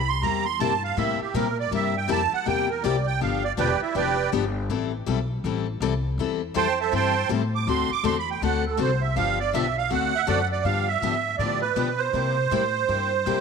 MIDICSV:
0, 0, Header, 1, 5, 480
1, 0, Start_track
1, 0, Tempo, 372208
1, 302, Time_signature, 4, 2, 24, 8
1, 17288, End_track
2, 0, Start_track
2, 0, Title_t, "Accordion"
2, 0, Program_c, 0, 21
2, 112, Note_on_c, 0, 84, 111
2, 290, Note_on_c, 0, 82, 99
2, 291, Note_off_c, 0, 84, 0
2, 586, Note_off_c, 0, 82, 0
2, 587, Note_on_c, 0, 84, 106
2, 768, Note_off_c, 0, 84, 0
2, 776, Note_on_c, 0, 81, 98
2, 1068, Note_off_c, 0, 81, 0
2, 1084, Note_on_c, 0, 77, 97
2, 1256, Note_off_c, 0, 77, 0
2, 1268, Note_on_c, 0, 76, 96
2, 1554, Note_off_c, 0, 76, 0
2, 1561, Note_on_c, 0, 67, 69
2, 1734, Note_off_c, 0, 67, 0
2, 1746, Note_on_c, 0, 70, 83
2, 2032, Note_off_c, 0, 70, 0
2, 2063, Note_on_c, 0, 74, 89
2, 2224, Note_off_c, 0, 74, 0
2, 2253, Note_on_c, 0, 76, 93
2, 2525, Note_off_c, 0, 76, 0
2, 2543, Note_on_c, 0, 79, 92
2, 2703, Note_off_c, 0, 79, 0
2, 2730, Note_on_c, 0, 81, 106
2, 3003, Note_off_c, 0, 81, 0
2, 3012, Note_on_c, 0, 78, 95
2, 3177, Note_off_c, 0, 78, 0
2, 3196, Note_on_c, 0, 79, 105
2, 3475, Note_off_c, 0, 79, 0
2, 3484, Note_on_c, 0, 70, 73
2, 3653, Note_off_c, 0, 70, 0
2, 3660, Note_on_c, 0, 74, 82
2, 3947, Note_off_c, 0, 74, 0
2, 3955, Note_on_c, 0, 79, 100
2, 4128, Note_off_c, 0, 79, 0
2, 4156, Note_on_c, 0, 77, 83
2, 4435, Note_off_c, 0, 77, 0
2, 4443, Note_on_c, 0, 74, 98
2, 4548, Note_off_c, 0, 74, 0
2, 4632, Note_on_c, 0, 71, 73
2, 4634, Note_on_c, 0, 67, 73
2, 4635, Note_on_c, 0, 74, 75
2, 4636, Note_on_c, 0, 79, 89
2, 4913, Note_off_c, 0, 71, 0
2, 4914, Note_off_c, 0, 67, 0
2, 4914, Note_off_c, 0, 74, 0
2, 4915, Note_off_c, 0, 79, 0
2, 4929, Note_on_c, 0, 76, 74
2, 4934, Note_on_c, 0, 64, 54
2, 5095, Note_off_c, 0, 76, 0
2, 5097, Note_off_c, 0, 64, 0
2, 5111, Note_on_c, 0, 67, 74
2, 5113, Note_on_c, 0, 79, 91
2, 5114, Note_on_c, 0, 74, 74
2, 5118, Note_on_c, 0, 71, 76
2, 5548, Note_off_c, 0, 67, 0
2, 5549, Note_off_c, 0, 74, 0
2, 5549, Note_off_c, 0, 79, 0
2, 5551, Note_off_c, 0, 71, 0
2, 8470, Note_on_c, 0, 84, 108
2, 8474, Note_on_c, 0, 72, 91
2, 8474, Note_on_c, 0, 79, 94
2, 8474, Note_on_c, 0, 81, 86
2, 8752, Note_off_c, 0, 84, 0
2, 8753, Note_off_c, 0, 72, 0
2, 8754, Note_off_c, 0, 79, 0
2, 8754, Note_off_c, 0, 81, 0
2, 8775, Note_on_c, 0, 81, 89
2, 8780, Note_on_c, 0, 76, 74
2, 8781, Note_on_c, 0, 72, 72
2, 8786, Note_on_c, 0, 69, 68
2, 8938, Note_off_c, 0, 81, 0
2, 8940, Note_off_c, 0, 72, 0
2, 8940, Note_off_c, 0, 76, 0
2, 8943, Note_off_c, 0, 69, 0
2, 8963, Note_on_c, 0, 72, 78
2, 8964, Note_on_c, 0, 84, 95
2, 8968, Note_on_c, 0, 79, 79
2, 8968, Note_on_c, 0, 81, 78
2, 9394, Note_off_c, 0, 72, 0
2, 9394, Note_off_c, 0, 84, 0
2, 9397, Note_off_c, 0, 79, 0
2, 9397, Note_off_c, 0, 81, 0
2, 9741, Note_on_c, 0, 86, 96
2, 9901, Note_off_c, 0, 86, 0
2, 9919, Note_on_c, 0, 84, 101
2, 10196, Note_off_c, 0, 84, 0
2, 10219, Note_on_c, 0, 86, 120
2, 10380, Note_off_c, 0, 86, 0
2, 10399, Note_on_c, 0, 84, 92
2, 10540, Note_off_c, 0, 84, 0
2, 10563, Note_on_c, 0, 83, 95
2, 10702, Note_off_c, 0, 83, 0
2, 10717, Note_on_c, 0, 79, 80
2, 10859, Note_off_c, 0, 79, 0
2, 10878, Note_on_c, 0, 78, 95
2, 11156, Note_off_c, 0, 78, 0
2, 11180, Note_on_c, 0, 69, 75
2, 11340, Note_off_c, 0, 69, 0
2, 11357, Note_on_c, 0, 72, 93
2, 11626, Note_on_c, 0, 76, 88
2, 11635, Note_off_c, 0, 72, 0
2, 11803, Note_off_c, 0, 76, 0
2, 11821, Note_on_c, 0, 77, 109
2, 12107, Note_off_c, 0, 77, 0
2, 12119, Note_on_c, 0, 74, 96
2, 12290, Note_off_c, 0, 74, 0
2, 12305, Note_on_c, 0, 76, 92
2, 12590, Note_off_c, 0, 76, 0
2, 12610, Note_on_c, 0, 77, 100
2, 12776, Note_off_c, 0, 77, 0
2, 12796, Note_on_c, 0, 78, 98
2, 13096, Note_on_c, 0, 76, 110
2, 13171, Note_off_c, 0, 76, 0
2, 13262, Note_on_c, 0, 74, 106
2, 13395, Note_off_c, 0, 74, 0
2, 13513, Note_off_c, 0, 78, 0
2, 13567, Note_on_c, 0, 74, 94
2, 13728, Note_off_c, 0, 74, 0
2, 13729, Note_on_c, 0, 77, 108
2, 14034, Note_on_c, 0, 76, 100
2, 14041, Note_off_c, 0, 77, 0
2, 14649, Note_off_c, 0, 76, 0
2, 14677, Note_on_c, 0, 74, 100
2, 14966, Note_off_c, 0, 74, 0
2, 14979, Note_on_c, 0, 71, 92
2, 15450, Note_on_c, 0, 72, 99
2, 15484, Note_off_c, 0, 71, 0
2, 17288, Note_off_c, 0, 72, 0
2, 17288, End_track
3, 0, Start_track
3, 0, Title_t, "Steel-string acoustic guitar"
3, 0, Program_c, 1, 25
3, 296, Note_on_c, 1, 58, 71
3, 299, Note_on_c, 1, 48, 63
3, 300, Note_on_c, 1, 55, 75
3, 308, Note_on_c, 1, 64, 73
3, 311, Note_on_c, 1, 67, 81
3, 572, Note_off_c, 1, 58, 0
3, 573, Note_off_c, 1, 48, 0
3, 573, Note_off_c, 1, 55, 0
3, 578, Note_off_c, 1, 64, 0
3, 579, Note_off_c, 1, 67, 0
3, 777, Note_on_c, 1, 55, 99
3, 778, Note_on_c, 1, 48, 93
3, 787, Note_on_c, 1, 58, 96
3, 789, Note_on_c, 1, 64, 91
3, 789, Note_on_c, 1, 67, 93
3, 923, Note_off_c, 1, 48, 0
3, 923, Note_off_c, 1, 55, 0
3, 928, Note_off_c, 1, 58, 0
3, 929, Note_off_c, 1, 64, 0
3, 929, Note_off_c, 1, 67, 0
3, 1248, Note_on_c, 1, 48, 69
3, 1254, Note_on_c, 1, 55, 69
3, 1259, Note_on_c, 1, 58, 75
3, 1265, Note_on_c, 1, 64, 81
3, 1266, Note_on_c, 1, 67, 82
3, 1526, Note_off_c, 1, 48, 0
3, 1529, Note_off_c, 1, 55, 0
3, 1532, Note_off_c, 1, 58, 0
3, 1535, Note_off_c, 1, 64, 0
3, 1535, Note_off_c, 1, 67, 0
3, 1735, Note_on_c, 1, 48, 98
3, 1738, Note_on_c, 1, 55, 97
3, 1742, Note_on_c, 1, 58, 92
3, 1753, Note_on_c, 1, 64, 97
3, 1753, Note_on_c, 1, 67, 102
3, 1881, Note_off_c, 1, 48, 0
3, 1882, Note_off_c, 1, 55, 0
3, 1884, Note_off_c, 1, 58, 0
3, 1889, Note_off_c, 1, 64, 0
3, 1890, Note_off_c, 1, 67, 0
3, 2217, Note_on_c, 1, 48, 73
3, 2222, Note_on_c, 1, 58, 77
3, 2225, Note_on_c, 1, 55, 72
3, 2227, Note_on_c, 1, 64, 75
3, 2229, Note_on_c, 1, 67, 75
3, 2490, Note_off_c, 1, 48, 0
3, 2492, Note_off_c, 1, 58, 0
3, 2493, Note_off_c, 1, 55, 0
3, 2495, Note_off_c, 1, 64, 0
3, 2496, Note_off_c, 1, 67, 0
3, 2679, Note_on_c, 1, 48, 92
3, 2689, Note_on_c, 1, 55, 106
3, 2695, Note_on_c, 1, 58, 92
3, 2698, Note_on_c, 1, 64, 101
3, 2698, Note_on_c, 1, 67, 101
3, 2831, Note_off_c, 1, 48, 0
3, 2836, Note_off_c, 1, 55, 0
3, 2839, Note_off_c, 1, 58, 0
3, 2841, Note_off_c, 1, 64, 0
3, 2841, Note_off_c, 1, 67, 0
3, 3164, Note_on_c, 1, 48, 70
3, 3174, Note_on_c, 1, 58, 77
3, 3177, Note_on_c, 1, 55, 78
3, 3186, Note_on_c, 1, 64, 77
3, 3187, Note_on_c, 1, 67, 76
3, 3442, Note_off_c, 1, 48, 0
3, 3447, Note_off_c, 1, 58, 0
3, 3449, Note_off_c, 1, 55, 0
3, 3453, Note_off_c, 1, 64, 0
3, 3454, Note_off_c, 1, 67, 0
3, 3657, Note_on_c, 1, 48, 96
3, 3662, Note_on_c, 1, 55, 93
3, 3666, Note_on_c, 1, 58, 91
3, 3668, Note_on_c, 1, 64, 103
3, 3677, Note_on_c, 1, 67, 109
3, 3800, Note_off_c, 1, 48, 0
3, 3802, Note_off_c, 1, 55, 0
3, 3804, Note_off_c, 1, 58, 0
3, 3805, Note_off_c, 1, 64, 0
3, 3809, Note_off_c, 1, 67, 0
3, 4135, Note_on_c, 1, 50, 66
3, 4139, Note_on_c, 1, 53, 65
3, 4143, Note_on_c, 1, 59, 72
3, 4147, Note_on_c, 1, 62, 70
3, 4153, Note_on_c, 1, 67, 75
3, 4407, Note_off_c, 1, 50, 0
3, 4409, Note_off_c, 1, 53, 0
3, 4411, Note_off_c, 1, 59, 0
3, 4413, Note_off_c, 1, 62, 0
3, 4416, Note_off_c, 1, 67, 0
3, 4606, Note_on_c, 1, 50, 86
3, 4613, Note_on_c, 1, 53, 100
3, 4620, Note_on_c, 1, 59, 98
3, 4625, Note_on_c, 1, 62, 102
3, 4629, Note_on_c, 1, 67, 98
3, 4753, Note_off_c, 1, 50, 0
3, 4757, Note_off_c, 1, 53, 0
3, 4760, Note_off_c, 1, 59, 0
3, 4763, Note_off_c, 1, 62, 0
3, 4765, Note_off_c, 1, 67, 0
3, 5090, Note_on_c, 1, 50, 71
3, 5094, Note_on_c, 1, 53, 68
3, 5101, Note_on_c, 1, 62, 72
3, 5102, Note_on_c, 1, 67, 77
3, 5104, Note_on_c, 1, 59, 72
3, 5364, Note_off_c, 1, 50, 0
3, 5366, Note_off_c, 1, 53, 0
3, 5370, Note_off_c, 1, 62, 0
3, 5370, Note_off_c, 1, 67, 0
3, 5371, Note_off_c, 1, 59, 0
3, 5572, Note_on_c, 1, 50, 83
3, 5576, Note_on_c, 1, 53, 87
3, 5584, Note_on_c, 1, 59, 98
3, 5585, Note_on_c, 1, 67, 98
3, 5590, Note_on_c, 1, 62, 101
3, 5716, Note_off_c, 1, 50, 0
3, 5718, Note_off_c, 1, 53, 0
3, 5722, Note_off_c, 1, 59, 0
3, 5723, Note_off_c, 1, 67, 0
3, 5725, Note_off_c, 1, 62, 0
3, 6056, Note_on_c, 1, 52, 73
3, 6059, Note_on_c, 1, 55, 73
3, 6065, Note_on_c, 1, 60, 70
3, 6070, Note_on_c, 1, 64, 76
3, 6072, Note_on_c, 1, 69, 72
3, 6327, Note_off_c, 1, 52, 0
3, 6328, Note_off_c, 1, 55, 0
3, 6331, Note_off_c, 1, 60, 0
3, 6334, Note_off_c, 1, 64, 0
3, 6335, Note_off_c, 1, 69, 0
3, 6530, Note_on_c, 1, 52, 88
3, 6532, Note_on_c, 1, 55, 95
3, 6543, Note_on_c, 1, 60, 100
3, 6545, Note_on_c, 1, 64, 97
3, 6553, Note_on_c, 1, 69, 100
3, 6675, Note_off_c, 1, 52, 0
3, 6676, Note_off_c, 1, 55, 0
3, 6682, Note_off_c, 1, 60, 0
3, 6682, Note_off_c, 1, 64, 0
3, 6686, Note_off_c, 1, 69, 0
3, 7021, Note_on_c, 1, 55, 71
3, 7028, Note_on_c, 1, 52, 66
3, 7033, Note_on_c, 1, 64, 71
3, 7037, Note_on_c, 1, 60, 75
3, 7039, Note_on_c, 1, 69, 71
3, 7289, Note_off_c, 1, 55, 0
3, 7293, Note_off_c, 1, 52, 0
3, 7295, Note_off_c, 1, 64, 0
3, 7297, Note_off_c, 1, 60, 0
3, 7298, Note_off_c, 1, 69, 0
3, 7502, Note_on_c, 1, 52, 99
3, 7502, Note_on_c, 1, 55, 103
3, 7505, Note_on_c, 1, 60, 102
3, 7506, Note_on_c, 1, 69, 106
3, 7512, Note_on_c, 1, 64, 92
3, 7641, Note_off_c, 1, 52, 0
3, 7641, Note_off_c, 1, 55, 0
3, 7642, Note_off_c, 1, 60, 0
3, 7643, Note_off_c, 1, 69, 0
3, 7646, Note_off_c, 1, 64, 0
3, 7983, Note_on_c, 1, 52, 71
3, 7988, Note_on_c, 1, 55, 67
3, 7995, Note_on_c, 1, 64, 73
3, 7998, Note_on_c, 1, 60, 75
3, 7999, Note_on_c, 1, 69, 76
3, 8250, Note_off_c, 1, 52, 0
3, 8253, Note_off_c, 1, 55, 0
3, 8256, Note_off_c, 1, 64, 0
3, 8258, Note_off_c, 1, 60, 0
3, 8258, Note_off_c, 1, 69, 0
3, 8437, Note_on_c, 1, 52, 91
3, 8442, Note_on_c, 1, 55, 95
3, 8450, Note_on_c, 1, 60, 92
3, 8457, Note_on_c, 1, 64, 92
3, 8460, Note_on_c, 1, 69, 102
3, 8588, Note_off_c, 1, 52, 0
3, 8591, Note_off_c, 1, 55, 0
3, 8595, Note_off_c, 1, 60, 0
3, 8599, Note_off_c, 1, 64, 0
3, 8600, Note_off_c, 1, 69, 0
3, 8922, Note_on_c, 1, 52, 74
3, 8929, Note_on_c, 1, 55, 75
3, 8936, Note_on_c, 1, 64, 76
3, 8937, Note_on_c, 1, 60, 78
3, 8940, Note_on_c, 1, 69, 83
3, 9200, Note_off_c, 1, 52, 0
3, 9203, Note_off_c, 1, 55, 0
3, 9207, Note_off_c, 1, 60, 0
3, 9207, Note_off_c, 1, 64, 0
3, 9209, Note_off_c, 1, 69, 0
3, 9404, Note_on_c, 1, 55, 96
3, 9410, Note_on_c, 1, 52, 96
3, 9417, Note_on_c, 1, 60, 98
3, 9417, Note_on_c, 1, 64, 100
3, 9427, Note_on_c, 1, 69, 95
3, 9552, Note_off_c, 1, 55, 0
3, 9555, Note_off_c, 1, 52, 0
3, 9558, Note_off_c, 1, 64, 0
3, 9559, Note_off_c, 1, 60, 0
3, 9563, Note_off_c, 1, 69, 0
3, 9899, Note_on_c, 1, 50, 68
3, 9900, Note_on_c, 1, 57, 73
3, 9907, Note_on_c, 1, 60, 74
3, 9914, Note_on_c, 1, 66, 76
3, 9917, Note_on_c, 1, 69, 77
3, 10168, Note_off_c, 1, 50, 0
3, 10169, Note_off_c, 1, 57, 0
3, 10173, Note_off_c, 1, 60, 0
3, 10176, Note_off_c, 1, 66, 0
3, 10177, Note_off_c, 1, 69, 0
3, 10366, Note_on_c, 1, 50, 92
3, 10366, Note_on_c, 1, 57, 101
3, 10376, Note_on_c, 1, 60, 95
3, 10378, Note_on_c, 1, 69, 106
3, 10380, Note_on_c, 1, 66, 109
3, 10513, Note_off_c, 1, 50, 0
3, 10513, Note_off_c, 1, 57, 0
3, 10518, Note_off_c, 1, 60, 0
3, 10519, Note_off_c, 1, 69, 0
3, 10520, Note_off_c, 1, 66, 0
3, 10861, Note_on_c, 1, 50, 74
3, 10866, Note_on_c, 1, 66, 75
3, 10868, Note_on_c, 1, 57, 82
3, 10871, Note_on_c, 1, 60, 75
3, 10876, Note_on_c, 1, 69, 80
3, 11130, Note_off_c, 1, 50, 0
3, 11132, Note_off_c, 1, 66, 0
3, 11133, Note_off_c, 1, 57, 0
3, 11134, Note_off_c, 1, 60, 0
3, 11137, Note_off_c, 1, 69, 0
3, 11314, Note_on_c, 1, 50, 84
3, 11320, Note_on_c, 1, 57, 89
3, 11326, Note_on_c, 1, 60, 94
3, 11330, Note_on_c, 1, 66, 102
3, 11340, Note_on_c, 1, 69, 100
3, 11467, Note_off_c, 1, 50, 0
3, 11470, Note_off_c, 1, 57, 0
3, 11473, Note_off_c, 1, 60, 0
3, 11475, Note_off_c, 1, 66, 0
3, 11480, Note_off_c, 1, 69, 0
3, 11813, Note_on_c, 1, 50, 70
3, 11819, Note_on_c, 1, 59, 76
3, 11820, Note_on_c, 1, 53, 78
3, 11824, Note_on_c, 1, 62, 72
3, 11829, Note_on_c, 1, 67, 83
3, 12086, Note_off_c, 1, 50, 0
3, 12089, Note_off_c, 1, 53, 0
3, 12089, Note_off_c, 1, 59, 0
3, 12091, Note_off_c, 1, 62, 0
3, 12094, Note_off_c, 1, 67, 0
3, 12294, Note_on_c, 1, 50, 91
3, 12308, Note_on_c, 1, 53, 94
3, 12309, Note_on_c, 1, 62, 107
3, 12312, Note_on_c, 1, 59, 106
3, 12323, Note_on_c, 1, 67, 104
3, 12437, Note_off_c, 1, 50, 0
3, 12445, Note_off_c, 1, 53, 0
3, 12445, Note_off_c, 1, 62, 0
3, 12446, Note_off_c, 1, 59, 0
3, 12452, Note_off_c, 1, 67, 0
3, 12769, Note_on_c, 1, 50, 72
3, 12772, Note_on_c, 1, 57, 70
3, 12775, Note_on_c, 1, 60, 77
3, 12784, Note_on_c, 1, 66, 76
3, 12791, Note_on_c, 1, 69, 75
3, 13044, Note_off_c, 1, 50, 0
3, 13046, Note_off_c, 1, 57, 0
3, 13048, Note_off_c, 1, 60, 0
3, 13052, Note_off_c, 1, 66, 0
3, 13056, Note_off_c, 1, 69, 0
3, 13240, Note_on_c, 1, 50, 88
3, 13245, Note_on_c, 1, 60, 99
3, 13248, Note_on_c, 1, 57, 99
3, 13257, Note_on_c, 1, 66, 110
3, 13261, Note_on_c, 1, 69, 98
3, 13391, Note_off_c, 1, 50, 0
3, 13394, Note_off_c, 1, 60, 0
3, 13395, Note_off_c, 1, 57, 0
3, 13400, Note_off_c, 1, 66, 0
3, 13402, Note_off_c, 1, 69, 0
3, 13733, Note_on_c, 1, 50, 65
3, 13734, Note_on_c, 1, 53, 61
3, 13738, Note_on_c, 1, 59, 69
3, 13743, Note_on_c, 1, 62, 69
3, 13749, Note_on_c, 1, 67, 67
3, 14007, Note_off_c, 1, 50, 0
3, 14008, Note_off_c, 1, 53, 0
3, 14010, Note_off_c, 1, 59, 0
3, 14012, Note_off_c, 1, 62, 0
3, 14015, Note_off_c, 1, 67, 0
3, 14216, Note_on_c, 1, 50, 88
3, 14224, Note_on_c, 1, 53, 90
3, 14227, Note_on_c, 1, 62, 93
3, 14228, Note_on_c, 1, 59, 90
3, 14229, Note_on_c, 1, 67, 101
3, 14360, Note_off_c, 1, 50, 0
3, 14364, Note_off_c, 1, 53, 0
3, 14366, Note_off_c, 1, 59, 0
3, 14366, Note_off_c, 1, 62, 0
3, 14367, Note_off_c, 1, 67, 0
3, 14696, Note_on_c, 1, 50, 68
3, 14705, Note_on_c, 1, 53, 62
3, 14706, Note_on_c, 1, 59, 66
3, 14711, Note_on_c, 1, 62, 69
3, 14715, Note_on_c, 1, 67, 69
3, 14970, Note_off_c, 1, 50, 0
3, 14975, Note_off_c, 1, 53, 0
3, 14975, Note_off_c, 1, 59, 0
3, 14978, Note_off_c, 1, 62, 0
3, 14980, Note_off_c, 1, 67, 0
3, 15163, Note_on_c, 1, 50, 81
3, 15166, Note_on_c, 1, 53, 81
3, 15169, Note_on_c, 1, 59, 92
3, 15179, Note_on_c, 1, 62, 89
3, 15180, Note_on_c, 1, 67, 93
3, 15315, Note_off_c, 1, 50, 0
3, 15317, Note_off_c, 1, 53, 0
3, 15318, Note_off_c, 1, 59, 0
3, 15323, Note_off_c, 1, 62, 0
3, 15324, Note_off_c, 1, 67, 0
3, 15648, Note_on_c, 1, 48, 65
3, 15654, Note_on_c, 1, 55, 67
3, 15659, Note_on_c, 1, 58, 67
3, 15669, Note_on_c, 1, 64, 70
3, 15671, Note_on_c, 1, 67, 76
3, 15928, Note_off_c, 1, 48, 0
3, 15931, Note_off_c, 1, 55, 0
3, 15933, Note_off_c, 1, 58, 0
3, 15938, Note_off_c, 1, 64, 0
3, 15940, Note_off_c, 1, 67, 0
3, 16135, Note_on_c, 1, 48, 89
3, 16137, Note_on_c, 1, 55, 90
3, 16147, Note_on_c, 1, 58, 83
3, 16147, Note_on_c, 1, 64, 100
3, 16151, Note_on_c, 1, 67, 91
3, 16283, Note_off_c, 1, 48, 0
3, 16284, Note_off_c, 1, 55, 0
3, 16289, Note_off_c, 1, 58, 0
3, 16290, Note_off_c, 1, 64, 0
3, 16291, Note_off_c, 1, 67, 0
3, 16615, Note_on_c, 1, 48, 63
3, 16619, Note_on_c, 1, 55, 69
3, 16620, Note_on_c, 1, 58, 66
3, 16633, Note_on_c, 1, 67, 72
3, 16634, Note_on_c, 1, 64, 64
3, 16894, Note_off_c, 1, 48, 0
3, 16896, Note_off_c, 1, 55, 0
3, 16896, Note_off_c, 1, 58, 0
3, 16903, Note_off_c, 1, 64, 0
3, 16903, Note_off_c, 1, 67, 0
3, 17101, Note_on_c, 1, 48, 83
3, 17106, Note_on_c, 1, 55, 83
3, 17111, Note_on_c, 1, 58, 88
3, 17112, Note_on_c, 1, 67, 101
3, 17114, Note_on_c, 1, 64, 95
3, 17248, Note_off_c, 1, 48, 0
3, 17251, Note_off_c, 1, 55, 0
3, 17254, Note_off_c, 1, 58, 0
3, 17254, Note_off_c, 1, 67, 0
3, 17255, Note_off_c, 1, 64, 0
3, 17288, End_track
4, 0, Start_track
4, 0, Title_t, "Upright bass"
4, 0, Program_c, 2, 32
4, 0, Note_on_c, 2, 36, 88
4, 278, Note_off_c, 2, 36, 0
4, 288, Note_on_c, 2, 40, 88
4, 759, Note_off_c, 2, 40, 0
4, 767, Note_on_c, 2, 43, 88
4, 1238, Note_off_c, 2, 43, 0
4, 1251, Note_on_c, 2, 45, 89
4, 1533, Note_off_c, 2, 45, 0
4, 1729, Note_on_c, 2, 46, 96
4, 2197, Note_off_c, 2, 46, 0
4, 2209, Note_on_c, 2, 43, 92
4, 2677, Note_off_c, 2, 43, 0
4, 2689, Note_on_c, 2, 41, 92
4, 2970, Note_off_c, 2, 41, 0
4, 3181, Note_on_c, 2, 40, 85
4, 3642, Note_off_c, 2, 40, 0
4, 3662, Note_on_c, 2, 36, 93
4, 4122, Note_off_c, 2, 36, 0
4, 4143, Note_on_c, 2, 31, 86
4, 4603, Note_off_c, 2, 31, 0
4, 4612, Note_on_c, 2, 28, 94
4, 4891, Note_off_c, 2, 28, 0
4, 5093, Note_on_c, 2, 29, 88
4, 5557, Note_off_c, 2, 29, 0
4, 5582, Note_on_c, 2, 31, 93
4, 6042, Note_off_c, 2, 31, 0
4, 6053, Note_on_c, 2, 33, 84
4, 6517, Note_off_c, 2, 33, 0
4, 6535, Note_on_c, 2, 35, 90
4, 6998, Note_off_c, 2, 35, 0
4, 7014, Note_on_c, 2, 33, 92
4, 7477, Note_off_c, 2, 33, 0
4, 7484, Note_on_c, 2, 36, 94
4, 7953, Note_off_c, 2, 36, 0
4, 7967, Note_on_c, 2, 40, 89
4, 8434, Note_off_c, 2, 40, 0
4, 8451, Note_on_c, 2, 41, 88
4, 8916, Note_off_c, 2, 41, 0
4, 8928, Note_on_c, 2, 43, 83
4, 9395, Note_off_c, 2, 43, 0
4, 9406, Note_on_c, 2, 45, 100
4, 9874, Note_off_c, 2, 45, 0
4, 9893, Note_on_c, 2, 38, 92
4, 10171, Note_off_c, 2, 38, 0
4, 10361, Note_on_c, 2, 40, 93
4, 10831, Note_off_c, 2, 40, 0
4, 10853, Note_on_c, 2, 38, 87
4, 11318, Note_off_c, 2, 38, 0
4, 11336, Note_on_c, 2, 36, 97
4, 11799, Note_off_c, 2, 36, 0
4, 11809, Note_on_c, 2, 31, 88
4, 12276, Note_off_c, 2, 31, 0
4, 12297, Note_on_c, 2, 35, 91
4, 12760, Note_off_c, 2, 35, 0
4, 12776, Note_on_c, 2, 38, 96
4, 13240, Note_off_c, 2, 38, 0
4, 13252, Note_on_c, 2, 42, 96
4, 13719, Note_off_c, 2, 42, 0
4, 13725, Note_on_c, 2, 43, 83
4, 14196, Note_off_c, 2, 43, 0
4, 14207, Note_on_c, 2, 44, 85
4, 14674, Note_off_c, 2, 44, 0
4, 14682, Note_on_c, 2, 45, 82
4, 15152, Note_off_c, 2, 45, 0
4, 15160, Note_on_c, 2, 47, 84
4, 15636, Note_off_c, 2, 47, 0
4, 15645, Note_on_c, 2, 48, 81
4, 16119, Note_off_c, 2, 48, 0
4, 16133, Note_on_c, 2, 45, 87
4, 16604, Note_off_c, 2, 45, 0
4, 16615, Note_on_c, 2, 43, 79
4, 17086, Note_off_c, 2, 43, 0
4, 17101, Note_on_c, 2, 41, 94
4, 17288, Note_off_c, 2, 41, 0
4, 17288, End_track
5, 0, Start_track
5, 0, Title_t, "Muted upright bass strokes"
5, 1554, Note_on_c, 9, 29, 43
5, 1683, Note_off_c, 9, 29, 0
5, 2997, Note_on_c, 9, 29, 42
5, 3126, Note_off_c, 9, 29, 0
5, 10188, Note_on_c, 9, 29, 42
5, 10317, Note_off_c, 9, 29, 0
5, 17288, End_track
0, 0, End_of_file